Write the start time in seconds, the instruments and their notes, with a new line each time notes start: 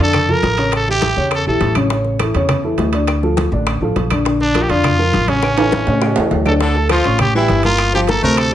0.00 upright bass F2, upright piano D3 D4 D5, trumpet A4
0.13 high bongo, high conga, low conga, high timbale, claves
0.29 upright piano F3 F4 A4, trumpet A#4, high conga, low conga
0.43 upright bass A1, high bongo, low bongo, high conga, high timbale
0.58 upright piano C#3 C#4 C#5, high bongo, high timbale
0.72 trumpet A4, high bongo, high conga, high timbale, claves
0.87 upright piano E3 E4 G4, trumpet G4, high bongo, high conga
1.02 high bongo, high conga, high timbale
1.16 upright bass E2, upright piano C#3 C#4 C#5, high bongo, high conga
1.31 high bongo, high conga, high timbale, claves
1.35 trumpet A4
1.46 upright bass A#1, upright piano E3 E4 G4, trumpet A4, high conga
1.61 upright bass A1, high bongo, low bongo, high conga, high timbale
1.75 upright piano C#3 C#4 C#5, high bongo, high conga, high timbale, claves
1.90 upright piano C#3 C#4 C#5, high bongo, high conga, high timbale
2.05 high bongo, high conga
2.19 upright piano E3 E4 A4, high bongo, high conga, high timbale, claves
2.34 upright bass E2, upright piano C#3 C#4 C#5, high bongo, high conga, high timbale
2.49 high bongo, high conga, low conga, high timbale, claves
2.63 upright piano E3 E4 A4, high conga
2.78 upright bass D2, high bongo, low bongo, high conga, high timbale, low timbale
2.93 upright piano D3 D4 D5, high bongo, high timbale
3.07 high bongo, high conga, high timbale, claves
3.23 upright piano F3 F4 A4, high bongo, high conga
3.37 high bongo, high conga, high timbale
3.52 upright bass A1, upright piano D3 D4 D5, high bongo, high conga
3.67 high bongo, high conga, high timbale, claves
3.81 upright bass A1, upright piano F3 F4 A4, high conga
3.96 upright bass A#1, high bongo, low bongo, high conga, high timbale
4.10 upright piano D3 D4 D5, high bongo, high conga, high timbale, claves
4.25 upright piano D3 D4 D5, high bongo, high conga, high timbale
4.40 trumpet D4, high bongo, high conga
4.54 upright piano F3 F4 A#4, high bongo, high conga, high timbale, claves
4.63 trumpet G4
4.69 upright bass F2, upright piano D3 D4 D5, trumpet F4, high bongo, high conga, high timbale
4.84 high bongo, high conga, low conga, high timbale, claves
4.98 upright piano F3 F4 A#4, high conga
5.13 upright bass A1, high bongo, low bongo, high conga, high timbale
5.28 upright piano C#3 C#4 C#5, trumpet C#4, high bongo, high conga, high timbale
5.43 high bongo, high conga, high timbale, claves
5.58 upright piano E3 E4 A4, high bongo, high conga, high timbale
5.72 high bongo, high conga, high timbale
5.87 upright bass A2, upright piano C#3 C#4 C#5, high bongo, high conga, low timbale
6.02 high bongo, high conga, low timbale, claves
6.16 upright bass E2, upright piano E3 E4 A4, high conga, low timbale
6.31 upright bass D2, high bongo, low bongo, high conga, low timbale
6.46 upright piano D3 D4 D5, trumpet A4, high bongo, high conga, low timbale, claves
6.60 upright piano D3 D4 D5, baritone saxophone D3, trumpet A4, high bongo, high conga, high timbale
6.75 upright piano A3 A4 A5, high bongo, high conga
6.89 baritone saxophone F3, trumpet F4, high bongo, high conga, high timbale, claves
7.04 upright bass A1, upright piano C#4 C#5 C#6, high bongo, high conga, high timbale
7.19 trumpet G4, high bongo, high conga, low conga, high timbale, claves
7.34 baritone saxophone E3, upright piano G3 G4 G5, trumpet E4, high conga
7.48 upright bass G1, high bongo, low bongo, high conga, high timbale
7.63 upright piano A#3 A#4 A#5, trumpet F4, high bongo, high conga, high timbale
7.78 high bongo, high conga, high timbale, claves
7.93 baritone saxophone F3, upright piano F3 F4 F5, trumpet G4, high bongo, high conga
8.07 upright piano A#3 A#4 A#5, trumpet A4, high bongo, high conga, high timbale
8.22 upright bass D2, upright piano C3 C4 C5, baritone saxophone A3, trumpet A#4, high bongo, high conga
8.37 trumpet A4, high bongo, high conga, high timbale, claves